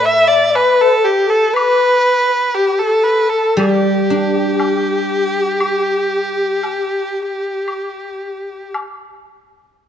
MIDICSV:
0, 0, Header, 1, 5, 480
1, 0, Start_track
1, 0, Tempo, 1013514
1, 737, Time_signature, 4, 2, 24, 8
1, 3141, Tempo, 1058201
1, 4101, Tempo, 1192843
1, 4559, End_track
2, 0, Start_track
2, 0, Title_t, "Erhu"
2, 0, Program_c, 0, 110
2, 26, Note_on_c, 0, 76, 97
2, 129, Note_on_c, 0, 74, 93
2, 136, Note_off_c, 0, 76, 0
2, 261, Note_on_c, 0, 71, 87
2, 268, Note_off_c, 0, 74, 0
2, 383, Note_on_c, 0, 69, 89
2, 390, Note_off_c, 0, 71, 0
2, 495, Note_on_c, 0, 67, 80
2, 502, Note_off_c, 0, 69, 0
2, 615, Note_on_c, 0, 69, 88
2, 622, Note_off_c, 0, 67, 0
2, 726, Note_on_c, 0, 71, 94
2, 733, Note_off_c, 0, 69, 0
2, 1206, Note_on_c, 0, 67, 79
2, 1214, Note_off_c, 0, 71, 0
2, 1320, Note_on_c, 0, 69, 83
2, 1328, Note_off_c, 0, 67, 0
2, 1438, Note_on_c, 0, 71, 82
2, 1445, Note_off_c, 0, 69, 0
2, 1560, Note_on_c, 0, 69, 80
2, 1567, Note_off_c, 0, 71, 0
2, 1690, Note_on_c, 0, 67, 74
2, 1698, Note_off_c, 0, 69, 0
2, 4097, Note_off_c, 0, 67, 0
2, 4559, End_track
3, 0, Start_track
3, 0, Title_t, "Xiao"
3, 0, Program_c, 1, 77
3, 20, Note_on_c, 1, 76, 83
3, 239, Note_on_c, 1, 74, 57
3, 246, Note_off_c, 1, 76, 0
3, 262, Note_on_c, 1, 71, 83
3, 269, Note_off_c, 1, 74, 0
3, 463, Note_off_c, 1, 71, 0
3, 466, Note_on_c, 1, 69, 50
3, 493, Note_on_c, 1, 67, 77
3, 500, Note_off_c, 1, 69, 0
3, 603, Note_on_c, 1, 69, 74
3, 610, Note_off_c, 1, 67, 0
3, 728, Note_on_c, 1, 71, 90
3, 735, Note_off_c, 1, 69, 0
3, 1089, Note_off_c, 1, 71, 0
3, 1216, Note_on_c, 1, 67, 72
3, 1335, Note_on_c, 1, 69, 75
3, 1343, Note_off_c, 1, 67, 0
3, 1567, Note_off_c, 1, 69, 0
3, 1570, Note_on_c, 1, 69, 73
3, 1692, Note_on_c, 1, 67, 65
3, 1699, Note_off_c, 1, 69, 0
3, 4098, Note_off_c, 1, 67, 0
3, 4559, End_track
4, 0, Start_track
4, 0, Title_t, "Guzheng"
4, 0, Program_c, 2, 107
4, 0, Note_on_c, 2, 45, 59
4, 252, Note_off_c, 2, 45, 0
4, 1689, Note_on_c, 2, 55, 58
4, 1943, Note_on_c, 2, 62, 44
4, 2900, Note_off_c, 2, 62, 0
4, 3135, Note_off_c, 2, 55, 0
4, 4559, End_track
5, 0, Start_track
5, 0, Title_t, "Drums"
5, 261, Note_on_c, 9, 76, 41
5, 261, Note_on_c, 9, 77, 41
5, 308, Note_off_c, 9, 76, 0
5, 308, Note_off_c, 9, 77, 0
5, 740, Note_on_c, 9, 76, 59
5, 788, Note_off_c, 9, 76, 0
5, 1703, Note_on_c, 9, 76, 46
5, 1750, Note_off_c, 9, 76, 0
5, 2177, Note_on_c, 9, 76, 45
5, 2177, Note_on_c, 9, 77, 47
5, 2224, Note_off_c, 9, 76, 0
5, 2224, Note_off_c, 9, 77, 0
5, 2654, Note_on_c, 9, 76, 64
5, 2702, Note_off_c, 9, 76, 0
5, 3141, Note_on_c, 9, 77, 43
5, 3186, Note_off_c, 9, 77, 0
5, 3615, Note_on_c, 9, 76, 49
5, 3661, Note_off_c, 9, 76, 0
5, 4099, Note_on_c, 9, 76, 44
5, 4099, Note_on_c, 9, 77, 48
5, 4139, Note_off_c, 9, 76, 0
5, 4139, Note_off_c, 9, 77, 0
5, 4559, End_track
0, 0, End_of_file